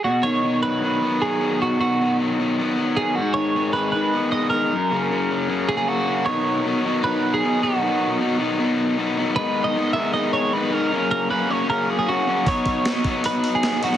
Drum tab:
HH |----------------|----------------|----------------|----------------|
SD |----------------|----------------|----------------|----------------|
BD |----------------|----------------|----------------|----------------|

HH |----------------|----------------|----------------|----------------|
SD |----------------|----------------|----------------|----------------|
BD |----------------|----------------|----------------|----------------|

HH |o-o-o-o-o-o-o-o-|
SD |----o-------o--o|
BD |o-o---o---------|